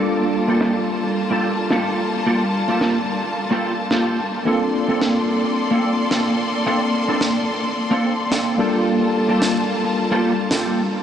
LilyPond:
<<
  \new Staff \with { instrumentName = "Clean electric guitar" } { \time 4/4 \key g \minor \tempo 4 = 109 <bes f' g' a'>16 r8 <bes f' g' a'>8 r4 <bes f' g' a'>16 r8 <bes f' g' a'>8 r8 | <bes f' g' a'>16 r8 <bes f' g' a'>8 r4 <bes f' g' a'>16 r8 <bes f' g' a'>8 r8 | <bes c' d' a'>16 r8 <bes c' d' a'>8 r4 <bes c' d' a'>16 r8 <bes c' d' a'>8 r8 | <bes c' d' a'>16 r8 <bes c' d' a'>8 r4 <bes c' d' a'>16 r8 <bes c' d' a'>8 <bes f' g' a'>8~ |
<bes f' g' a'>16 r8 <bes f' g' a'>8 r4 <bes f' g' a'>16 r8 <bes f' g' a'>8 r8 | }
  \new Staff \with { instrumentName = "String section" } { \time 4/4 \key g \minor <g bes f' a''>1~ | <g bes f' a''>1 | <bes a' d'' c'''>1~ | <bes a' d'' c'''>2.~ <bes a' d'' c'''>8 <g bes f' a''>8~ |
<g bes f' a''>1 | }
  \new Staff \with { instrumentName = "Tine electric piano" } { \time 4/4 \key g \minor <g bes d' f' a'>1~ | <g bes d' f' a'>2.~ <g bes d' f' a'>8 r8 | <bes c' d' f' a'>1~ | <bes c' d' f' a'>2.~ <bes c' d' f' a'>8 <g bes d' f' a'>8~ |
<g bes d' f' a'>1 | }
  \new DrumStaff \with { instrumentName = "Drums" } \drummode { \time 4/4 r4 sn4 r4 sn4 | r4 sn4 r4 sn4 | r4 sn4 r4 sn4 | r4 sn4 r4 sn4 |
r4 sn4 r4 sn4 | }
>>